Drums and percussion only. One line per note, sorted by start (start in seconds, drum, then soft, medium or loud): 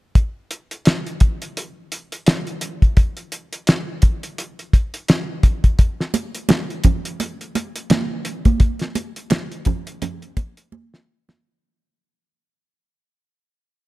0.15 kick medium
0.15 closed hi-hat medium
0.51 closed hi-hat medium
0.71 closed hi-hat soft
0.85 snare medium
0.85 closed hi-hat medium
1.07 closed hi-hat soft
1.20 kick medium
1.20 closed hi-hat medium
1.42 closed hi-hat soft
1.57 closed hi-hat medium
1.92 closed hi-hat medium
2.12 closed hi-hat soft
2.27 snare loud
2.27 closed hi-hat medium
2.47 closed hi-hat soft
2.61 closed hi-hat medium
2.82 kick medium
2.82 closed hi-hat soft
2.97 kick medium
2.97 closed hi-hat medium
3.17 closed hi-hat soft
3.32 closed hi-hat medium
3.53 closed hi-hat soft
3.67 snare medium
3.67 closed hi-hat medium
4.02 kick medium
4.02 closed hi-hat medium
4.23 closed hi-hat soft
4.38 closed hi-hat medium
4.59 closed hi-hat soft
4.73 kick medium
4.73 closed hi-hat medium
4.94 closed hi-hat soft
5.08 snare loud
5.08 closed hi-hat medium
5.43 kick medium
5.43 closed hi-hat medium
5.64 kick medium
5.64 closed hi-hat soft
5.79 kick medium
5.79 closed hi-hat medium
6.00 snare soft
6.14 closed hi-hat medium
6.14 muted conga soft
6.35 closed hi-hat soft
6.49 snare medium
6.49 closed hi-hat medium
6.49 high conga medium
6.70 closed hi-hat soft
6.84 kick medium
6.84 closed hi-hat medium
6.84 muted conga soft
6.84 low conga medium
7.05 closed hi-hat medium
7.20 closed hi-hat medium
7.20 muted conga soft
7.41 closed hi-hat soft
7.55 closed hi-hat medium
7.55 muted conga soft
7.76 closed hi-hat soft
7.90 snare loud
7.90 closed hi-hat medium
7.90 high conga medium
8.25 closed hi-hat medium
8.45 kick medium
8.45 closed hi-hat soft
8.45 high conga medium
8.60 kick medium
8.60 closed hi-hat medium
8.79 snare soft
8.79 closed hi-hat soft
8.95 closed hi-hat medium
8.95 muted conga soft
9.16 closed hi-hat soft
9.30 snare medium
9.30 closed hi-hat medium
9.30 high conga medium
9.52 closed hi-hat soft
9.65 kick medium
9.65 closed hi-hat medium
9.65 low conga medium
9.87 closed hi-hat medium
10.02 closed hi-hat medium
10.02 muted conga soft
10.02 low conga medium
10.22 closed hi-hat soft
10.37 kick medium
10.37 closed hi-hat medium
10.37 muted conga soft
10.57 closed hi-hat soft
10.72 high conga medium
10.94 snare medium
11.29 snare medium
11.29 high conga medium